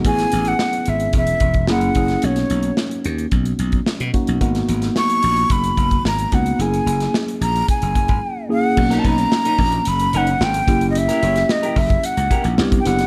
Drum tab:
CC |----------------|----------------|----------------|----------------|
HH |xxxx-xxxxxxx-xxx|xxxx-xxxxxxx-xxx|xxxx-xxxxxxx-xxx|xxxx-xxxxxxx----|
SD |-o--o-------o--o|-o--o-------o---|-o-oo-------o---|---oo-----------|
BD |o-------o-oo--o-|--------o--o--o-|o-------o-oo--o-|--------o-oo----|

CC |x---------------|----------------|
HH |-xxx-xoxxxxx-xxx|xxxx-xoxxxxx-xxx|
SD |-o--o-------o---|-o-oo-------o-oo|
BD |o-o---o-------o-|------oo--o--o--|